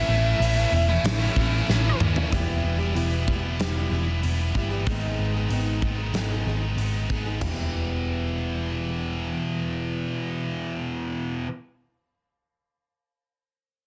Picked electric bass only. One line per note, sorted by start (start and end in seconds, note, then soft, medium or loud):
0.08 0.33 A1 medium
0.40 0.64 A1 loud
0.72 0.96 E1 medium
1.04 1.28 A1 medium
1.36 1.60 A1 loud
1.68 1.92 A1 medium
2.00 2.24 D#2 medium
2.32 2.62 E1 medium
2.64 2.94 E1 medium
2.95 3.56 E1 medium
3.59 3.90 E1 medium
3.91 4.21 E1 medium
4.23 4.53 E1 medium
4.55 4.85 G1 medium
4.87 5.17 G#1 medium
5.19 5.49 G#1 medium
5.50 5.81 G#1 medium
5.82 6.13 G#1 medium
6.13 6.44 G#1 medium
6.45 6.76 G#1 medium
6.77 7.08 G#1 medium
7.10 7.41 G#1 medium
7.42 11.44 E1 medium